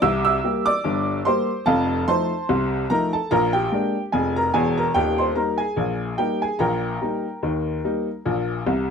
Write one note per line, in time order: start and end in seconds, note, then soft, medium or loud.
0.02 0.37 C2 medium
0.02 0.37 C3 medium
0.02 0.24 E5 medium
0.02 0.23 E6 medium
0.25 0.63 E5 medium
0.25 0.64 E6 loud
0.44 0.66 G3 medium
0.44 0.66 A#3 medium
0.44 0.67 G4 medium
0.66 1.21 D5 medium
0.66 1.13 D6 loud
0.84 1.19 G1 medium
0.84 1.19 G2 medium
1.25 1.48 G3 medium
1.25 1.49 A#3 medium
1.25 1.49 G4 medium
1.25 1.64 C5 medium
1.25 1.58 C6 medium
1.66 2.01 F1 medium
1.66 2.01 F2 medium
1.66 2.05 A4 medium
1.66 2.05 F5 medium
1.66 2.05 A5 loud
2.08 2.30 F3 medium
2.08 2.30 A3 medium
2.08 2.31 D#4 medium
2.08 2.86 C5 medium
2.08 2.86 A5 medium
2.08 2.73 C6 loud
2.49 2.84 C2 medium
2.49 2.84 C3 medium
2.90 3.13 F3 medium
2.90 3.13 A3 medium
2.90 3.13 D#4 medium
2.90 3.11 A#4 medium
2.90 3.12 A#5 loud
3.13 3.30 A4 medium
3.13 3.31 A5 medium
3.31 3.66 A#1 medium
3.31 3.66 A#2 medium
3.31 3.52 A#4 medium
3.31 3.53 A#5 loud
3.53 4.09 G4 medium
3.53 4.00 G5 medium
3.72 3.94 G#3 medium
3.72 3.95 A#3 soft
3.72 3.95 D4 medium
4.12 4.48 F1 medium
4.12 4.48 F2 medium
4.12 4.34 G#4 medium
4.12 4.35 G#5 medium
4.36 4.53 A#4 medium
4.36 4.54 A#5 medium
4.54 4.87 E1 medium
4.54 4.87 E2 medium
4.54 4.76 G#4 medium
4.54 4.76 G#5 medium
4.78 4.95 A#4 medium
4.78 4.95 A#5 medium
4.94 5.30 D#1 medium
4.94 5.30 D#2 medium
4.94 5.17 G4 medium
4.94 5.17 G5 medium
5.18 5.36 C5 medium
5.18 5.36 C6 medium
5.35 5.58 G3 soft
5.35 5.59 A#3 soft
5.35 5.59 D#4 medium
5.35 5.57 A#4 soft
5.35 5.59 A#5 medium
5.58 6.15 G#4 medium
5.58 6.15 G#5 medium
5.76 6.12 A#1 medium
5.76 6.12 A#2 medium
6.18 6.41 G3 soft
6.18 6.41 A#3 soft
6.18 6.42 D#4 soft
6.18 6.40 G4 medium
6.18 6.41 G5 medium
6.42 6.59 G#4 medium
6.42 6.60 G#5 medium
6.59 6.95 A#1 medium
6.59 6.95 A#2 medium
6.59 8.90 A#4 medium
6.59 8.90 G5 medium
6.59 8.58 A#5 medium
7.01 7.24 G3 soft
7.01 7.25 A#3 soft
7.01 7.25 D#4 soft
7.43 7.78 D#2 medium
7.43 7.78 D#3 medium
7.84 8.07 G3 soft
7.84 8.07 A#3 soft
7.84 8.07 D#4 medium
8.26 8.61 A#1 medium
8.26 8.61 A#2 medium
8.67 8.90 C2 medium
8.67 8.90 C3 medium